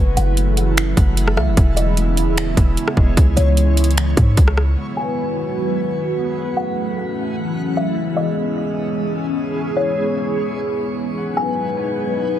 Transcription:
0.00 0.16 F#1 loud
0.00 1.56 C#3 medium
0.00 4.73 E3 medium
0.00 1.56 F#3 medium
0.00 1.56 A3 medium
0.00 2.48 B3 medium
0.00 3.14 E4 medium
0.00 4.73 E4 medium
0.00 1.56 A4 loud
0.00 1.82 B4 medium
0.00 0.37 F#5 medium
0.17 0.94 F#1 loud
0.17 1.33 F#5 medium
0.17 closed hi-hat medium
0.37 0.97 F#5 medium
0.37 closed hi-hat medium
0.57 closed hi-hat medium
0.77 1.37 A5 loud
0.77 finger snap loud
0.77 closed hi-hat medium
0.97 1.39 F#1 loud
0.97 2.58 F#5 medium
0.97 kick loud
0.97 closed hi-hat medium
1.17 closed hi-hat medium
1.28 cross-stick loud
1.37 1.49 C#2 medium
1.37 1.56 E5 medium
1.37 1.63 A5 medium
1.37 cross-stick loud
1.47 1.57 F#1 loud
1.57 2.29 E1 loud
1.57 3.16 C#3 medium
1.57 3.16 G#3 medium
1.57 4.74 G#3 medium
1.57 4.74 B3 medium
1.57 3.16 C#5 loud
1.57 2.17 G#5 loud
1.57 kick loud
1.57 closed hi-hat medium
1.77 4.39 E4 medium
1.77 2.73 D#5 medium
1.77 closed hi-hat medium
1.97 2.56 G#3 medium
1.97 closed hi-hat medium
2.17 2.77 G#5 medium
2.17 closed hi-hat medium
2.27 2.56 D#1 loud
2.37 3.57 C#5 loud
2.37 finger snap loud
2.37 closed hi-hat medium
2.57 2.76 E1 loud
2.57 3.22 G#3 medium
2.57 kick loud
2.57 closed hi-hat medium
2.77 4.27 G#5 loud
2.77 closed hi-hat medium
2.88 cross-stick loud
2.97 3.16 E1 loud
2.97 4.70 E5 medium
2.97 kick loud
3.17 3.36 C#2 loud
3.17 4.76 C#3 medium
3.17 4.76 B3 medium
3.17 4.76 E4 medium
3.17 4.76 C#5 medium
3.17 kick loud
3.17 closed hi-hat medium
3.37 4.14 C#2 loud
3.37 4.73 C#5 medium
3.37 closed hi-hat medium
3.57 4.16 C#5 medium
3.57 closed hi-hat medium
3.77 closed hi-hat medium
3.84 closed hi-hat medium
3.91 closed hi-hat soft
3.98 4.57 B5 loud
3.98 finger snap loud
3.98 closed hi-hat medium
4.17 4.36 G#2 loud
4.17 6.08 C#5 medium
4.17 kick loud
4.17 closed hi-hat medium
4.37 4.76 C#2 loud
4.37 kick medium
4.37 closed hi-hat medium
4.48 cross-stick loud
4.57 5.93 B5 medium
4.57 cross-stick loud
4.77 6.36 D#3 medium
4.77 7.94 F#3 medium
4.77 6.36 G#3 medium
4.77 6.36 B3 medium
4.77 7.94 F#4 medium
4.77 6.36 G#4 medium
4.77 7.94 F#5 medium
4.77 5.36 F#5 loud
4.97 5.57 B4 medium
4.97 5.93 G#5 medium
5.17 5.77 B3 medium
5.37 5.97 F#5 medium
5.57 6.17 B4 loud
5.77 8.88 B3 medium
5.97 6.77 F#5 medium
6.18 8.22 B4 medium
6.37 11.13 E3 medium
6.37 7.96 A3 medium
6.37 11.13 C#4 medium
6.37 7.96 E4 medium
6.37 7.96 A4 medium
6.57 7.73 F#5 medium
6.78 7.37 F#5 medium
7.18 7.77 A5 loud
7.37 8.98 F#5 medium
7.77 7.96 E5 medium
7.77 8.03 A5 medium
7.97 12.39 G#3 medium
7.97 12.39 B3 medium
7.97 11.14 C#4 medium
7.97 11.14 E4 medium
7.97 9.56 G#4 medium
7.97 12.39 G#4 medium
7.97 8.57 G#5 loud
8.17 10.79 E4 medium
8.17 9.13 D#5 medium
8.37 8.96 G#3 medium
8.57 9.17 G#5 medium
8.77 9.97 C#5 loud
8.97 9.62 G#3 medium
9.17 10.67 G#5 medium
9.37 11.10 E5 medium
9.57 11.16 B4 medium
9.77 11.13 C#5 medium
9.97 10.56 C#5 medium
10.38 10.97 B5 loud
10.57 12.39 C#5 medium
10.98 12.33 B5 medium
11.17 12.39 F#3 medium
11.17 12.39 B3 medium
11.17 12.39 D#4 medium
11.17 12.39 G#4 medium
11.17 12.39 F#5 medium
11.17 11.77 F#5 loud
11.37 11.97 B4 medium
11.37 12.33 G#5 medium
11.57 12.17 B3 medium
11.77 12.37 F#5 medium
11.97 12.39 B4 loud
12.17 12.39 B3 medium

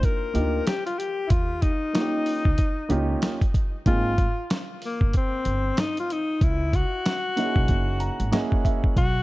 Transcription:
0.00 0.30 A#3 medium
0.00 0.30 D4 medium
0.00 0.30 D#4 medium
0.00 0.30 F4 medium
0.00 0.31 G4 medium
0.00 kick medium
0.00 closed hi-hat medium
0.05 0.69 A#4 loud
0.34 0.59 D2 medium
0.34 0.59 A#3 medium
0.34 0.59 D4 medium
0.34 0.59 D#4 medium
0.34 0.59 F4 medium
0.34 0.59 G4 medium
0.34 closed hi-hat medium
0.67 0.85 G4 loud
0.67 snare loud
0.67 closed hi-hat medium
0.86 1.00 F4 loud
0.86 closed hi-hat soft
0.98 1.29 G4 medium
0.98 closed hi-hat medium
1.27 1.69 D#2 loud
1.27 1.31 E4 medium
1.27 1.63 F4 medium
1.27 kick loud
1.27 closed hi-hat loud
1.62 3.54 D#4 medium
1.62 kick medium
1.62 closed hi-hat medium
1.93 2.41 A#3 medium
1.93 2.41 C#4 medium
1.93 2.42 D#4 medium
1.93 2.42 F4 medium
1.93 2.02 F#4 medium
1.93 snare medium
1.93 closed hi-hat medium
2.01 2.45 G4 medium
2.26 open hi-hat soft
2.45 2.55 C#2 medium
2.45 kick medium
2.58 kick medium
2.58 closed hi-hat medium
2.89 3.14 C#2 medium
2.89 3.37 A#3 medium
2.89 3.37 C#4 medium
2.89 3.37 D#4 medium
2.89 3.38 F4 medium
2.89 3.38 G4 medium
2.89 closed hi-hat medium
3.22 snare medium
3.22 closed hi-hat medium
3.41 kick medium
3.41 closed hi-hat medium
3.54 kick medium
3.54 closed hi-hat medium
3.86 4.25 G#1 medium
3.86 4.10 A#3 medium
3.86 4.10 C4 medium
3.86 4.11 D#4 medium
3.86 4.11 F4 medium
3.86 4.46 F4 loud
3.86 4.11 G#4 medium
3.86 kick loud
3.86 closed hi-hat medium
4.18 kick medium
4.18 closed hi-hat medium
4.50 snare loud
4.50 closed hi-hat medium
4.82 5.13 A#3 medium
4.82 open hi-hat medium
5.01 5.11 G1 medium
5.01 kick medium
5.13 5.82 C4 loud
5.13 kick medium
5.13 closed hi-hat medium
5.45 5.70 G1 medium
5.45 closed hi-hat medium
5.77 5.98 D#4 medium
5.77 snare loud
5.77 closed hi-hat medium
5.97 6.14 F4 loud
5.97 closed hi-hat soft
6.10 6.45 D#4 medium
6.10 closed hi-hat medium
6.41 6.80 C#2 loud
6.41 6.77 E4 loud
6.41 kick loud
6.41 closed hi-hat medium
6.73 8.66 F#4 loud
6.73 kick medium
6.73 closed hi-hat medium
7.06 snare loud
7.06 closed hi-hat medium
7.36 8.27 A#3 medium
7.36 8.28 C#4 medium
7.36 8.28 D#4 medium
7.36 8.28 E4 medium
7.36 7.45 F#4 medium
7.36 snare soft
7.36 closed hi-hat medium
7.45 8.32 G#4 medium
7.56 7.66 B1 medium
7.56 kick medium
7.68 8.08 F#1 medium
7.68 kick medium
7.68 closed hi-hat medium
8.00 8.30 A#5 medium
8.00 closed hi-hat medium
8.20 8.29 G#1 medium
8.20 closed hi-hat medium
8.32 8.96 A#3 medium
8.32 8.96 C#4 medium
8.32 8.97 E4 medium
8.32 8.97 G#4 medium
8.32 8.96 D#5 medium
8.32 8.62 F#5 medium
8.32 snare loud
8.32 closed hi-hat medium
8.52 kick medium
8.64 8.94 E5 medium
8.64 kick medium
8.64 closed hi-hat medium
8.84 kick medium
8.96 9.23 B1 medium
8.96 9.23 F#4 loud
8.96 kick loud
8.96 closed hi-hat medium

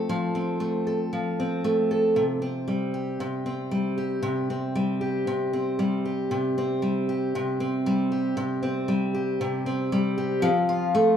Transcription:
0.00 0.59 A3 medium
0.00 0.35 C4 soft
0.00 0.86 A4 soft
0.09 1.12 F3 medium
0.35 1.39 C4 soft
0.60 1.63 A3 soft
0.87 1.90 A4 soft
1.13 2.71 F3 medium
1.40 2.41 C4 soft
1.64 2.22 A3 medium
1.91 2.22 A4 soft
2.16 3.19 C3 medium
2.42 3.45 C4 soft
2.68 3.70 G3 soft
2.94 3.96 G4 soft
3.20 4.21 C3 medium
3.46 4.50 C4 soft
3.71 4.74 G3 medium
3.98 5.00 G4 soft
4.23 5.26 C3 medium
4.50 5.53 C4 soft
4.75 5.78 G3 medium
5.01 6.04 G4 soft
5.27 6.30 C3 medium
5.53 6.57 C4 soft
5.79 6.81 G3 medium
6.05 7.08 G4 soft
6.31 7.34 C3 medium
6.58 7.60 C4 soft
6.82 7.85 G3 soft
7.09 8.10 G4 soft
7.35 8.36 C3 medium
7.60 8.62 C4 medium
7.86 8.87 G3 medium
8.12 9.13 G4 soft
8.37 9.40 C3 medium
8.63 9.66 C4 soft
8.88 9.91 G3 medium
9.14 10.16 G4 soft
9.41 10.49 C3 medium
9.66 11.17 C4 medium
9.92 10.49 G3 medium
10.18 10.49 G4 soft
10.40 11.17 F3 medium
10.40 11.17 C4 medium
10.40 11.17 F4 medium
10.40 11.17 A4 medium
10.45 11.17 F5 medium
10.69 11.17 F4 medium
10.95 11.17 A3 medium

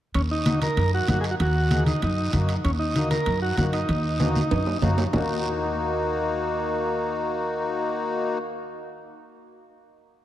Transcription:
0.14 0.65 D#2 medium
0.14 0.22 C#4 medium
0.14 high timbale medium
0.14 long guiro medium
0.31 0.60 D#4 medium
0.46 0.68 A#3 medium
0.46 0.68 D#4 medium
0.46 0.68 F#4 medium
0.46 high conga medium
0.46 high timbale medium
0.46 short guiro medium
0.62 0.91 A#4 loud
0.62 high conga medium
0.62 high timbale medium
0.62 short guiro medium
0.77 1.02 F#2 medium
0.77 high timbale medium
0.77 long guiro medium
0.94 1.08 F#4 medium
1.08 1.34 F#2 medium
1.08 1.30 A#3 medium
1.08 1.30 D#4 medium
1.08 1.31 F#4 medium
1.08 1.19 F#4 medium
1.08 high conga medium
1.08 high timbale medium
1.08 short guiro medium
1.21 1.25 G#4 medium
1.21 high timbale medium
1.21 short guiro medium
1.31 1.35 F#4 medium
1.40 1.90 D#2 loud
1.40 1.84 F#4 medium
1.40 high timbale medium
1.40 long guiro medium
1.71 1.93 A#3 medium
1.71 1.93 D#4 medium
1.71 1.93 G#4 medium
1.71 high conga medium
1.71 high timbale medium
1.71 short guiro medium
1.86 2.02 D#4 medium
1.86 high conga medium
1.86 high timbale medium
1.86 short guiro medium
2.02 2.27 F#2 medium
2.02 2.32 D#4 medium
2.02 high timbale medium
2.02 long guiro medium
2.33 2.58 F#2 medium
2.33 2.55 A#3 medium
2.33 2.55 D#4 medium
2.33 2.55 F#4 medium
2.33 high conga medium
2.33 high timbale medium
2.33 short guiro medium
2.49 high timbale medium
2.49 short guiro medium
2.64 3.14 D#2 loud
2.64 2.71 C#4 medium
2.64 high timbale medium
2.64 long guiro medium
2.79 3.09 D#4 medium
2.95 3.17 A#3 medium
2.95 3.17 D#4 medium
2.95 3.18 F#4 medium
2.95 high conga medium
2.95 high timbale medium
2.95 short guiro medium
3.11 3.40 A#4 loud
3.11 high conga medium
3.11 high timbale medium
3.11 short guiro medium
3.26 3.52 F#2 medium
3.26 high timbale medium
3.26 long guiro medium
3.42 3.57 F#4 medium
3.57 3.83 F#2 medium
3.57 3.79 A#3 medium
3.57 3.80 D#4 medium
3.57 3.65 F#4 medium
3.57 3.80 F#4 medium
3.57 high conga medium
3.57 high timbale medium
3.57 short guiro medium
3.73 4.78 D#4 medium
3.73 high timbale medium
3.73 short guiro medium
3.89 4.39 D#2 loud
3.89 high timbale medium
3.89 long guiro medium
4.19 4.41 A#3 medium
4.19 4.42 D#4 medium
4.19 4.42 F#4 medium
4.19 high conga medium
4.19 high timbale medium
4.19 short guiro medium
4.35 high conga medium
4.35 short guiro medium
4.51 4.76 F#2 medium
4.51 high timbale medium
4.51 long guiro medium
4.67 low timbale medium
4.82 5.07 F#2 medium
4.82 5.04 A#3 medium
4.82 5.04 D#4 medium
4.82 5.04 F#4 loud
4.82 high conga medium
4.82 low timbale medium
4.82 short guiro medium
4.98 low timbale medium
4.98 short guiro medium
5.13 9.09 D#2 medium
5.13 8.39 A#3 medium
5.13 8.38 D#4 medium
5.13 8.39 F#4 medium
5.13 low conga medium
5.13 low timbale medium
5.13 long guiro medium

